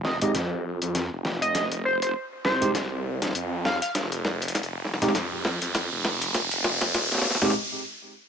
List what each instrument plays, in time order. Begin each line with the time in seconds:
Already playing: detuned saw bass F1, riser
0.05 analog synth lead D#5, snare
0.22 detuned saw bass G#1, tine electric piano G#3 C4 D#4 G4, analog synth lead D#5, closed hi-hat
0.35 detuned saw bass F2, snare, closed hi-hat
0.82 detuned saw bass F2, closed hi-hat
0.95 snare, closed hi-hat
1.12 detuned saw bass F1
1.25 snare
1.42 analog synth lead D#5, closed hi-hat
1.55 snare, closed hi-hat
1.72 detuned saw bass F1, closed hi-hat
1.85 analog synth lead C5
2.02 analog synth lead C5, closed hi-hat
2.45 detuned saw bass C2, analog synth lead C5, snare
2.62 tine electric piano G#3 C4 D#4 G4, closed hi-hat
2.75 snare, closed hi-hat
3.22 snare, closed hi-hat
3.24 snare
3.29 snare
3.31 snare
3.33 detuned saw bass F2, snare, closed hi-hat
3.65 analog synth lead F5, snare
3.82 analog synth lead F5, closed hi-hat
3.95 detuned saw bass F1, snare, closed hi-hat
4.12 closed hi-hat
4.25 detuned saw bass F1, snare
4.42 closed hi-hat
4.48 closed hi-hat
4.55 snare, closed hi-hat
4.63 closed hi-hat
4.72 detuned saw bass F1
4.85 snare
4.94 snare
5.02 detuned saw bass G#1, tine electric piano G#3 C4 D#4 G4, snare, closed hi-hat
5.08 snare
5.15 detuned saw bass F2, snare, closed hi-hat
5.45 snare
5.62 detuned saw bass F2, closed hi-hat
5.75 snare, closed hi-hat
5.92 detuned saw bass F1
6.05 snare
6.22 closed hi-hat
6.34 snare, closed hi-hat
6.51 detuned saw bass F1, closed hi-hat
6.64 snare
6.81 snare, closed hi-hat
6.94 detuned saw bass D#1, snare, closed hi-hat
7.12 snare, closed hi-hat
7.15 snare
7.18 snare
7.22 snare
7.25 snare
7.30 snare
7.35 snare
7.42 detuned saw bass F1, tine electric piano G#3 C4 D#4 G4, snare, closed hi-hat
7.45 snare
7.50 snare